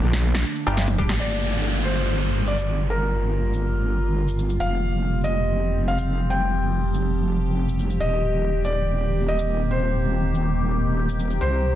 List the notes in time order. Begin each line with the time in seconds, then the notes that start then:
Already playing: D3 A3 A#3 D4
0.03 A#1
0.13 snare, closed hi-hat, shaker
0.35 snare, closed hi-hat
0.56 closed hi-hat
0.67 G1 G3 D4 G4
0.77 snare, closed hi-hat
0.88 high tom, shaker
0.98 G3 D4 G4, kick, closed hi-hat, shaker
1.09 A1, snare, shaker
1.20 G1 D3 G3 A#3 F4 D5, downlifter
1.84 C5, shaker
2.47 D5
2.58 shaker
2.90 A#4
3.54 shaker
4.28 shaker
4.39 shaker
4.50 shaker
4.60 F1 F3 C4 G4 F5
5.24 D#5, shaker
5.88 F5
5.99 shaker
6.30 G5
6.94 shaker
7.69 shaker
7.79 shaker
7.90 shaker
8.00 D#1 D#3 A#3 C4 D#5
8.64 D5, shaker
9.28 D#5
9.39 shaker
9.71 C5
10.35 shaker
11.09 shaker
11.20 shaker
11.30 shaker
11.41 C2 G3 C5